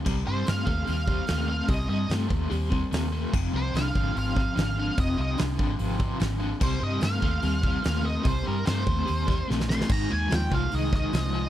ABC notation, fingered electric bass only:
X:1
M:4/4
L:1/8
Q:1/4=146
K:Cm
V:1 name="Fingered electric bass" clef=bass
C,, G,, G,, E,, E,,2 E,,2 | C,, G,, G,, E,, E,,2 E,,2 | F,,, C,, C,, A,,, A,,,2 A,,,2 | F,,, C,, C,, A,,, A,,,2 A,,,2 |
C,, G,, G,, E,, E,,2 E,,2 | C,, G,, G,, E,, E,,2 B,,,2 | A,,, E,, E,, C,, C,,2 C,,2 |]